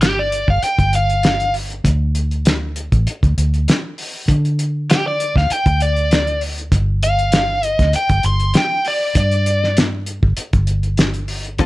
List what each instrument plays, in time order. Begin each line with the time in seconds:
Already playing: fingered electric bass G1
0.01 overdriven electric guitar G4, snare, closed hi-hat
0.19 overdriven electric guitar D5
0.32 closed hi-hat
0.48 fingered electric bass G1, overdriven electric guitar F5, kick
0.63 overdriven electric guitar G5, closed hi-hat
0.79 fingered electric bass G1, kick, closed hi-hat
0.93 overdriven electric guitar F5, closed hi-hat
1.10 closed hi-hat
1.23 snare, closed hi-hat
1.40 closed hi-hat
1.54 open hi-hat
1.70 closed hi-hat
1.84 fingered electric bass D2, kick, closed hi-hat
2.15 closed hi-hat
2.31 closed hi-hat
2.45 snare, closed hi-hat
2.76 closed hi-hat
2.92 fingered electric bass A1, kick, closed hi-hat
3.07 closed hi-hat
3.23 fingered electric bass D2, kick, closed hi-hat
3.38 fingered electric bass D2, closed hi-hat
3.54 closed hi-hat
3.68 snare, closed hi-hat
3.98 open hi-hat
4.28 fingered electric bass D3, kick, closed hi-hat
4.45 closed hi-hat
4.59 closed hi-hat
4.90 overdriven electric guitar G4, snare, closed hi-hat
5.07 overdriven electric guitar D5
5.20 closed hi-hat
5.36 fingered electric bass D2, overdriven electric guitar F5, kick, snare
5.50 overdriven electric guitar G5, muted fingered electric bass stroke, closed hi-hat
5.66 fingered electric bass D2, kick, closed hi-hat
5.80 overdriven electric guitar D5, closed hi-hat
5.96 closed hi-hat
6.11 snare, closed hi-hat
6.27 closed hi-hat
6.41 open hi-hat
6.58 closed hi-hat
6.72 fingered electric bass G1, kick, closed hi-hat
7.03 overdriven electric guitar F5, closed hi-hat
7.19 closed hi-hat
7.32 snare, closed hi-hat
7.63 overdriven electric guitar D#5, closed hi-hat
7.79 fingered electric bass D2, kick, snare, closed hi-hat
7.93 overdriven electric guitar G5, muted fingered electric bass stroke, closed hi-hat
8.09 fingered electric bass G1, kick, closed hi-hat
8.23 fingered electric bass G1, overdriven electric guitar C6, closed hi-hat
8.40 closed hi-hat
8.54 overdriven electric guitar G5, snare, closed hi-hat
8.85 overdriven electric guitar D5, open hi-hat
9.15 fingered electric bass G2, overdriven electric guitar D5, kick, closed hi-hat
9.31 closed hi-hat
9.46 closed hi-hat
9.64 snare
9.77 snare, closed hi-hat
10.06 closed hi-hat
10.22 fingered electric bass G1, kick
10.37 closed hi-hat
10.53 fingered electric bass G1, kick, closed hi-hat
10.67 closed hi-hat
10.83 closed hi-hat
10.97 snare, closed hi-hat
11.14 closed hi-hat
11.28 open hi-hat
11.45 closed hi-hat
11.58 fingered electric bass D2, clean electric guitar D3 C4 F4 A4, kick, closed hi-hat